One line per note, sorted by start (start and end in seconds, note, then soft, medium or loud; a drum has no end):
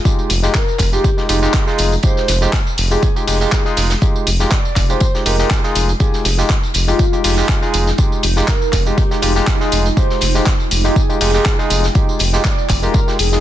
0.05 0.32 G#3 medium
0.05 0.32 D#4 medium
0.05 0.32 F4 medium
0.05 0.32 G4 medium
0.05 kick loud
0.05 closed hi-hat loud
0.05 tambourine soft
0.19 tambourine soft
0.30 0.48 F1 loud
0.30 closed hi-hat medium
0.30 open hi-hat loud
0.30 tambourine medium
0.43 0.59 G#3 loud
0.43 0.59 D#4 medium
0.43 0.59 F4 medium
0.43 0.59 G4 loud
0.43 snare medium
0.43 tambourine soft
0.55 0.88 A#4 loud
0.55 kick loud
0.55 snare loud
0.55 clap loud
0.55 closed hi-hat medium
0.55 tambourine soft
0.68 tambourine soft
0.79 0.98 F1 loud
0.79 kick medium
0.79 clap soft
0.79 closed hi-hat medium
0.79 open hi-hat loud
0.79 tambourine medium
0.92 1.09 G#3 medium
0.92 1.09 D#4 medium
0.92 1.09 F4 medium
0.92 1.25 G4 loud
0.92 1.09 G4 loud
0.92 tambourine soft
1.04 kick loud
1.04 closed hi-hat medium
1.04 tambourine soft
1.17 1.27 G#3 medium
1.17 1.27 D#4 medium
1.17 1.27 F4 medium
1.17 1.27 G4 medium
1.17 snare soft
1.17 tambourine soft
1.29 1.47 F1 medium
1.29 1.39 G#3 medium
1.29 1.39 D#4 medium
1.29 1.51 D#4 medium
1.29 1.39 F4 medium
1.29 1.40 G4 medium
1.29 closed hi-hat medium
1.29 open hi-hat loud
1.29 tambourine medium
1.42 1.64 G#3 medium
1.42 1.64 D#4 medium
1.42 1.64 F4 medium
1.42 1.64 G4 loud
1.42 snare soft
1.42 tambourine soft
1.53 kick loud
1.53 snare loud
1.53 clap loud
1.53 closed hi-hat medium
1.53 tambourine soft
1.67 1.93 G#3 medium
1.67 1.94 D#4 medium
1.67 1.94 F4 medium
1.67 1.94 G#4 loud
1.67 snare medium
1.67 tambourine soft
1.78 1.97 F1 loud
1.78 closed hi-hat medium
1.78 open hi-hat loud
1.78 tambourine medium
1.92 tambourine soft
2.03 2.30 G#3 medium
2.03 2.30 D#4 medium
2.03 2.30 F4 medium
2.03 2.30 G4 medium
2.03 2.48 C5 loud
2.03 kick loud
2.03 closed hi-hat medium
2.03 tambourine soft
2.17 snare soft
2.17 tambourine soft
2.28 2.46 F1 loud
2.28 snare soft
2.28 closed hi-hat medium
2.28 open hi-hat loud
2.28 tambourine medium
2.41 2.57 G#3 medium
2.41 2.58 D#4 medium
2.41 2.58 F4 medium
2.41 2.58 G4 loud
2.41 snare soft
2.41 tambourine soft
2.52 kick loud
2.52 snare loud
2.52 clap loud
2.52 closed hi-hat loud
2.52 tambourine soft
2.67 tambourine soft
2.78 2.96 F1 loud
2.78 closed hi-hat medium
2.78 open hi-hat loud
2.78 tambourine medium
2.91 3.07 G#3 loud
2.91 3.07 D#4 medium
2.91 3.07 F4 medium
2.91 3.07 G4 loud
2.91 3.23 G#4 loud
2.91 closed hi-hat soft
2.91 tambourine soft
3.03 kick loud
3.03 closed hi-hat loud
3.03 tambourine soft
3.16 3.25 G#3 medium
3.16 3.25 D#4 medium
3.16 3.25 F4 medium
3.16 3.25 G4 medium
3.16 closed hi-hat soft
3.16 tambourine soft
3.27 3.46 F1 medium
3.27 3.38 G#3 medium
3.27 3.38 D#4 medium
3.27 3.38 F4 medium
3.27 3.38 G4 medium
3.27 3.72 G#4 loud
3.27 open hi-hat loud
3.27 open hi-hat medium
3.27 tambourine medium
3.40 3.62 G#3 medium
3.40 3.62 D#4 medium
3.40 3.63 F4 medium
3.40 3.63 G4 loud
3.40 snare soft
3.40 tambourine soft
3.52 kick loud
3.52 snare loud
3.52 clap loud
3.52 tambourine soft
3.65 3.92 G#3 medium
3.65 3.92 D#4 medium
3.65 3.92 F4 medium
3.65 3.92 G#4 loud
3.65 snare soft
3.65 tambourine soft
3.77 3.95 F1 loud
3.77 snare loud
3.77 closed hi-hat medium
3.77 open hi-hat loud
3.77 tambourine medium
3.90 snare loud
3.90 closed hi-hat medium
3.90 tambourine soft
4.02 4.28 G#3 medium
4.02 4.29 D#4 medium
4.02 4.29 F4 medium
4.02 4.29 G4 medium
4.02 kick loud
4.02 closed hi-hat loud
4.02 tambourine medium
4.16 tambourine soft
4.27 4.45 F1 loud
4.27 closed hi-hat medium
4.27 open hi-hat loud
4.27 tambourine medium
4.40 4.56 G#3 loud
4.40 4.56 D#4 medium
4.40 4.56 F4 medium
4.40 4.56 G4 loud
4.40 snare medium
4.40 tambourine soft
4.50 4.85 D5 loud
4.50 kick loud
4.50 snare loud
4.50 clap loud
4.50 closed hi-hat medium
4.50 tambourine soft
4.65 tambourine soft
4.76 4.94 F1 loud
4.76 kick medium
4.76 clap soft
4.76 closed hi-hat medium
4.76 open hi-hat loud
4.76 tambourine medium
4.89 5.05 G#3 loud
4.89 5.06 D#4 medium
4.89 5.06 F4 medium
4.89 5.06 G4 loud
4.89 5.22 C5 loud
4.89 tambourine soft
5.00 kick loud
5.00 closed hi-hat medium
5.00 tambourine soft
5.14 5.23 G#3 medium
5.14 5.24 D#4 medium
5.14 5.24 F4 medium
5.14 5.24 G4 medium
5.14 snare soft
5.14 tambourine soft
5.26 5.44 F1 medium
5.26 5.36 G#3 medium
5.26 5.36 D#4 medium
5.26 5.36 F4 medium
5.26 5.36 G4 medium
5.26 5.48 A#4 medium
5.26 closed hi-hat medium
5.26 open hi-hat loud
5.26 tambourine medium
5.39 5.61 G#3 medium
5.39 5.61 D#4 medium
5.39 5.61 F4 medium
5.39 5.61 G4 loud
5.39 snare soft
5.39 tambourine soft
5.51 kick loud
5.51 snare loud
5.51 clap loud
5.51 closed hi-hat medium
5.51 tambourine soft
5.64 5.90 G#3 medium
5.64 5.90 D#4 medium
5.64 5.90 F4 medium
5.64 5.91 G#4 loud
5.64 snare medium
5.64 tambourine soft
5.75 5.94 F1 medium
5.75 closed hi-hat medium
5.75 open hi-hat loud
5.75 tambourine medium
5.89 tambourine soft
6.00 6.27 G#3 medium
6.00 13.40 G#3 medium
6.00 6.27 D#4 medium
6.00 13.40 D#4 medium
6.00 6.27 F4 medium
6.00 13.40 F4 medium
6.00 6.27 G4 medium
6.00 6.44 G#4 loud
6.00 13.40 G5 medium
6.00 kick loud
6.00 closed hi-hat medium
6.00 tambourine soft
6.13 snare soft
6.13 tambourine soft
6.25 6.43 F1 loud
6.25 snare medium
6.25 closed hi-hat medium
6.25 open hi-hat loud
6.25 tambourine medium
6.38 6.54 G#3 loud
6.38 6.54 D#4 medium
6.38 6.54 F4 medium
6.38 6.54 G4 loud
6.38 snare soft
6.38 tambourine soft
6.49 kick loud
6.49 snare loud
6.49 clap loud
6.49 closed hi-hat loud
6.49 tambourine soft
6.63 tambourine soft
6.74 6.93 F1 loud
6.74 closed hi-hat medium
6.74 open hi-hat loud
6.74 tambourine medium
6.88 7.04 G#3 loud
6.88 7.04 D#4 medium
6.88 7.04 F4 medium
6.88 7.20 F4 loud
6.88 7.04 G4 loud
6.88 closed hi-hat soft
6.88 tambourine soft
6.99 kick loud
6.99 closed hi-hat medium
6.99 tambourine soft
7.12 7.22 G#3 medium
7.12 7.22 D#4 medium
7.12 7.22 F4 medium
7.12 7.22 G4 medium
7.12 closed hi-hat soft
7.12 tambourine soft
7.24 7.42 F1 medium
7.24 7.34 G#3 medium
7.24 7.34 D#4 medium
7.24 7.68 F4 loud
7.24 7.34 F4 medium
7.24 7.35 G4 medium
7.24 open hi-hat medium
7.24 open hi-hat loud
7.24 tambourine medium
7.37 7.59 G#3 medium
7.37 7.59 D#4 medium
7.37 7.59 F4 medium
7.37 7.59 G4 loud
7.37 snare soft
7.37 tambourine soft
7.49 kick loud
7.49 snare loud
7.49 clap loud
7.49 tambourine soft
7.62 7.88 G#3 medium
7.62 7.89 D#4 medium
7.62 7.89 F4 medium
7.62 7.89 G#4 loud
7.62 snare soft
7.62 tambourine soft
7.74 7.92 F1 loud
7.74 closed hi-hat medium
7.74 open hi-hat loud
7.74 tambourine medium
7.87 snare soft
7.87 tambourine soft
7.98 8.25 G#3 medium
7.98 8.25 D#4 medium
7.98 8.25 F4 medium
7.98 8.25 G4 medium
7.98 kick loud
7.98 closed hi-hat loud
7.98 tambourine soft
8.12 tambourine soft
8.23 8.42 F1 loud
8.23 closed hi-hat medium
8.23 open hi-hat loud
8.23 tambourine medium
8.36 8.52 G#3 loud
8.36 8.53 D#4 medium
8.36 8.53 F4 medium
8.36 8.53 G4 loud
8.36 snare medium
8.36 tambourine soft
8.48 8.81 A#4 loud
8.48 kick loud
8.48 snare loud
8.48 clap loud
8.48 closed hi-hat medium
8.48 tambourine soft
8.62 tambourine soft
8.73 8.91 F1 loud
8.73 kick medium
8.73 clap soft
8.73 closed hi-hat medium
8.73 open hi-hat loud
8.73 tambourine medium
8.86 9.02 G#3 loud
8.86 9.02 D#4 medium
8.86 9.02 F4 medium
8.86 9.18 G4 loud
8.86 9.02 G4 loud
8.86 tambourine soft
8.98 kick loud
8.98 closed hi-hat loud
8.98 tambourine soft
9.11 9.20 G#3 medium
9.11 9.20 D#4 medium
9.11 9.20 F4 medium
9.11 9.20 G4 medium
9.11 snare soft
9.11 tambourine soft
9.22 9.41 F1 medium
9.22 9.32 G#3 medium
9.22 9.33 D#4 medium
9.22 9.45 D#4 medium
9.22 9.33 F4 medium
9.22 9.33 G4 medium
9.22 closed hi-hat medium
9.22 open hi-hat loud
9.22 tambourine medium
9.35 9.57 G#3 medium
9.35 9.57 D#4 medium
9.35 9.57 F4 medium
9.35 9.58 G4 loud
9.35 snare soft
9.35 tambourine soft
9.47 kick loud
9.47 snare loud
9.47 clap loud
9.47 closed hi-hat medium
9.47 tambourine soft
9.60 9.87 G#3 medium
9.60 9.87 D#4 medium
9.60 9.87 F4 medium
9.60 9.87 G#4 loud
9.60 snare medium
9.60 tambourine soft
9.72 9.90 F1 loud
9.72 closed hi-hat medium
9.72 open hi-hat loud
9.72 tambourine medium
9.86 tambourine soft
9.96 10.23 G#3 medium
9.96 10.23 D#4 medium
9.96 10.24 F4 medium
9.96 10.24 G4 medium
9.96 10.41 C5 loud
9.96 kick loud
9.96 closed hi-hat medium
9.96 tambourine soft
10.10 snare soft
10.10 tambourine soft
10.21 10.40 F1 loud
10.21 snare medium
10.21 closed hi-hat medium
10.21 open hi-hat loud
10.21 tambourine medium
10.35 10.51 G#3 loud
10.35 10.51 D#4 medium
10.35 10.51 F4 medium
10.35 10.51 G4 loud
10.35 snare soft
10.35 tambourine soft
10.46 kick loud
10.46 snare loud
10.46 clap loud
10.46 closed hi-hat medium
10.46 tambourine soft
10.60 tambourine soft
10.71 10.89 F1 loud
10.71 closed hi-hat medium
10.71 open hi-hat loud
10.71 tambourine medium
10.84 11.00 G#3 medium
10.84 11.00 D#4 medium
10.84 11.01 F4 medium
10.84 11.01 G4 loud
10.84 11.17 G#4 loud
10.84 closed hi-hat soft
10.84 tambourine soft
10.96 kick loud
10.96 closed hi-hat medium
10.96 tambourine soft
11.09 11.18 G#3 medium
11.09 11.18 D#4 medium
11.09 11.19 F4 medium
11.09 11.19 G4 medium
11.09 closed hi-hat soft
11.09 tambourine soft
11.21 11.39 F1 medium
11.21 11.31 G#3 medium
11.21 11.31 D#4 medium
11.21 11.31 F4 medium
11.21 11.31 G4 medium
11.21 11.65 G#4 loud
11.21 open hi-hat loud
11.21 open hi-hat medium
11.21 tambourine medium
11.34 11.56 G#3 medium
11.34 11.56 D#4 medium
11.34 11.56 F4 medium
11.34 11.56 G4 loud
11.34 snare soft
11.34 tambourine soft
11.46 kick loud
11.46 snare loud
11.46 clap loud
11.46 tambourine soft
11.58 11.85 G#3 medium
11.58 11.85 D#4 medium
11.58 11.85 F4 medium
11.58 11.86 G#4 loud
11.58 snare soft
11.58 tambourine soft
11.70 11.89 F1 loud
11.70 closed hi-hat medium
11.70 open hi-hat loud
11.70 tambourine medium
11.84 snare soft
11.84 tambourine soft
11.95 12.22 G#3 medium
11.95 12.22 D#4 medium
11.95 12.22 F4 medium
11.95 12.22 G4 medium
11.95 kick loud
11.95 closed hi-hat medium
11.95 tambourine soft
12.09 tambourine soft
12.19 12.38 F1 loud
12.19 closed hi-hat medium
12.19 open hi-hat loud
12.19 tambourine medium
12.33 12.49 G#3 medium
12.33 12.49 D#4 medium
12.33 12.49 F4 medium
12.33 12.49 G4 loud
12.33 snare medium
12.33 tambourine soft
12.45 12.78 D5 loud
12.45 kick loud
12.45 snare loud
12.45 clap loud
12.45 closed hi-hat loud
12.45 tambourine soft
12.58 tambourine soft
12.69 12.88 F1 loud
12.69 kick medium
12.69 clap soft
12.69 closed hi-hat medium
12.69 open hi-hat loud
12.69 tambourine medium
12.83 12.99 G#3 loud
12.83 12.99 D#4 medium
12.83 12.99 F4 medium
12.83 12.99 G4 loud
12.83 13.15 A#4 loud
12.83 tambourine soft
12.94 kick loud
12.94 closed hi-hat medium
12.94 tambourine soft
13.07 13.17 G#3 medium
13.07 13.17 D#4 medium
13.07 13.17 F4 medium
13.07 13.17 G4 medium
13.07 snare soft
13.07 tambourine soft
13.19 13.37 F1 loud
13.19 13.40 G#4 medium
13.19 closed hi-hat medium
13.19 open hi-hat loud
13.19 tambourine medium
13.32 13.40 G#3 medium
13.32 13.40 D#4 medium
13.32 13.40 F4 medium
13.32 13.40 G#4 medium
13.32 snare soft
13.32 tambourine soft